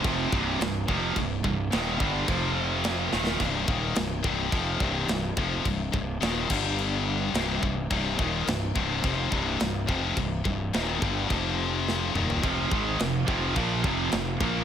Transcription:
0.04 F1 F2 C3 F3, kick, crash
0.32 C1 C2 G2 C3, kick
0.60 C1 C2 G2, snare, crash
0.88 F1 F2 C3 F3, kick
1.16 C1 C2 G2, kick, crash
1.44 C1 C2 G2, kick
1.72 D#1 D#2 A#2 D#3, snare, crash
2.00 G1 G2 D3 G3, kick
2.27 F1 F2 C3 F3, kick, crash
2.84 snare, crash
3.12 D#1 D#2 A#2 D#3, snare
3.27 snare
3.39 C1 C2 G2 C3, kick, crash
3.67 D#1 D#2 A#2 D#3, kick
3.95 C1 C2 G2, snare, crash
4.23 C1 C2 G2 C3, kick
4.52 F1 F2 C3 F3, kick, crash
4.80 C1 C2 G2 C3, kick
5.08 C1 C2 G2, snare, crash
5.37 F1 F2 C3 F3, kick
5.64 C1 C2 G2, kick, crash
5.93 C1 C2 G2, kick
6.21 D#1 D#2 A#2 D#3, snare, crash
6.48 G1 G2 D3 G3, kick, crash
6.79 crash
7.34 C1 C2 G2 C3, snare, crash
7.63 C1 C2 G2, kick
7.90 C1 C2 G2 C3, kick, crash
8.18 D#1 D#2 A#2 D#3, kick
8.47 C1 C2 G2, snare, crash
8.75 C1 C2 G2 C3, kick
9.02 F1 F2 C3 F3, kick, crash
9.30 C1 C2 G2 C3, kick
9.60 C1 C2 G2, snare, crash
9.87 F1 F2 C3 F3, kick
10.16 C1 C2 G2, kick, crash
10.44 C1 C2 G2, kick
10.73 D#1 D#2 A#2 D#3, snare, crash
11.00 G1 G2 D3 G3, kick
11.28 F1 F2 C3 F3, kick, crash
11.88 snare
12.14 D#1 D#2 A#2 D#3, mid tom
12.30 floor tom
12.43 F1 F2 C3 F3, kick, crash
12.69 G#1 G#2 D#3 G#3, kick
12.99 F1 F2 C3, snare, crash
13.27 F1 F2 C3 F3, kick
13.55 A#1 A#2 F3 A#3, kick, crash
13.83 F1 F2 C3 F3, kick
14.12 F1 F2 C3, snare, crash
14.40 A#1 A#2 F3 A#3, kick

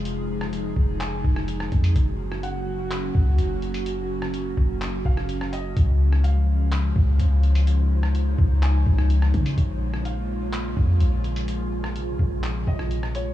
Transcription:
Already playing: F1 C3 F3 G#3 G#4
0.05 D#4, closed hi-hat
0.41 cross-stick
0.53 closed hi-hat
0.76 F1, kick
1.00 G#5, clap, closed hi-hat
1.24 F1, kick
1.36 cross-stick
1.48 closed hi-hat
1.60 cross-stick
1.72 F2, kick, closed hi-hat
1.84 closed hi-hat
1.96 F#1 C#3 F#3 A#3 C#4 F#4, kick, closed hi-hat
2.32 cross-stick
2.43 F#5, closed hi-hat
2.91 clap, closed hi-hat
3.15 C#2, kick
3.38 F#1, closed hi-hat
3.62 closed hi-hat
3.74 closed hi-hat
3.86 closed hi-hat
4.22 cross-stick
4.34 closed hi-hat
4.57 F#1, kick
4.81 clap, closed hi-hat
5.05 F#1 F5, kick
5.17 cross-stick
5.29 closed hi-hat
5.41 cross-stick
5.53 D#5, closed hi-hat
5.77 C#2 F3 G#3 F4 C5 C#5, kick, closed hi-hat
6.13 cross-stick
6.24 F5, closed hi-hat
6.72 clap, closed hi-hat
6.96 C#2, kick
7.20 C#2, closed hi-hat
7.43 closed hi-hat
7.55 closed hi-hat
7.67 D#4, closed hi-hat
8.03 cross-stick
8.15 closed hi-hat
8.38 C#2, kick
8.62 G#5, clap, closed hi-hat
8.86 C#2, kick
8.98 cross-stick
9.10 closed hi-hat
9.22 cross-stick
9.34 C#3, kick, closed hi-hat
9.46 closed hi-hat
9.58 A#1 F3 A#3 F4 G#4, kick, closed hi-hat
9.94 cross-stick
10.05 F5, closed hi-hat
10.53 clap, closed hi-hat
10.77 F2, kick
11.00 A#1, closed hi-hat
11.24 closed hi-hat
11.36 closed hi-hat
11.48 C3, closed hi-hat
11.84 cross-stick
11.96 closed hi-hat
12.19 A#1, kick
12.43 clap, closed hi-hat
12.67 A#1 D#5, kick
12.79 cross-stick
12.91 closed hi-hat
13.03 cross-stick
13.15 C#5, closed hi-hat

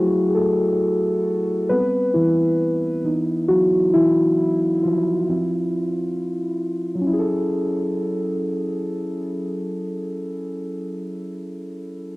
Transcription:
Already playing: F#3 A3 E4 F#4 G#4
0.29 G#4
0.35 A3 A4
1.69 G3 B3 C4 B4
2.14 E3 E4
3.04 E3 B3 D#4
3.48 F#3 F#4
3.94 E3 E4
4.83 F3 F4
5.28 F3 C4 E4
6.95 F#3
7.01 C#4
7.07 E4
7.13 G#4
7.19 A4

